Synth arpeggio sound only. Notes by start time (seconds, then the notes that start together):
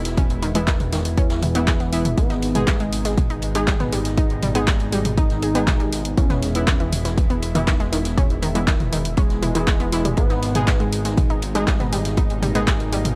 0.17 C#4 C#5
0.43 D#3 D#4
0.55 G#3 G#4
0.68 D#3 D#4
0.93 D#3 D#4
1.18 C#4 C#5
1.43 E3 E4
1.55 B3 B4
1.68 G#4 G#5
1.80 B3 B4
2.18 G#3 G#4
2.30 D#4 D#5
2.68 G3 G4
2.80 G#3 G#4
3.05 G#3 G#4
3.30 D#4 D#5
3.55 G#3 G#4
3.68 G3 G4
3.80 B3 B4
3.93 G3 G4
4.18 D#4 D#5
4.43 G3 G4
4.55 B3 B4
4.68 G3 G4
4.93 G3 G4
5.18 D#4 D#5
5.43 G#4 G#5
5.55 B3 B4
5.68 D#4 D#5
5.80 G3 G4
6.18 E3 E4
6.30 B3 B4
6.68 D#3 D#4
6.80 E3 E4
7.05 E3 E4
7.30 B3 B4
7.55 E3 E4
7.68 D#3 D#4
7.80 G#3 G#4
7.93 D#3 D#4
8.17 C#4 C#5
8.43 D#3 D#4
8.55 G#3 G#4
8.68 D#3 D#4
8.93 D#3 D#4
9.18 C#4 C#5
9.43 E3 E4
9.55 E3 E4
9.68 B3 B4
9.80 B3 B4
9.93 E4 E5
10.05 G3 G4
10.18 G#3 G#4
10.30 D#4 D#5
10.67 G3 G4
10.80 G#3 G#4
11.05 G#3 G#4
11.30 D#4 D#5
11.55 G#3 G#4
11.68 G3 G4
11.80 B3 B4
11.92 G3 G4
12.18 D#4 D#5
12.42 G3 G4
12.55 B3 B4
12.68 G3 G4
12.93 G3 G4